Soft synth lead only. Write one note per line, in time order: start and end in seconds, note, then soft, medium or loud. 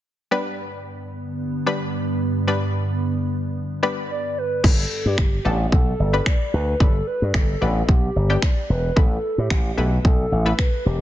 4.11 4.39 D5 medium
4.38 4.66 B4 medium
4.65 5.07 A4 medium
5.06 5.45 G4 medium
5.45 5.57 G4 medium
5.72 6.28 A4 medium
6.26 6.53 D5 loud
6.54 6.79 B4 medium
6.81 7.06 A4 loud
7.07 7.36 B4 medium
7.34 7.90 A4 medium
7.89 8.44 G4 medium
8.43 8.69 D5 loud
8.70 8.99 B4 medium
8.97 9.40 A4 loud
9.38 9.77 G4 medium
9.78 9.90 G4 medium
10.05 10.55 A4 loud
10.59 10.84 B4 loud
10.85 10.98 G4 medium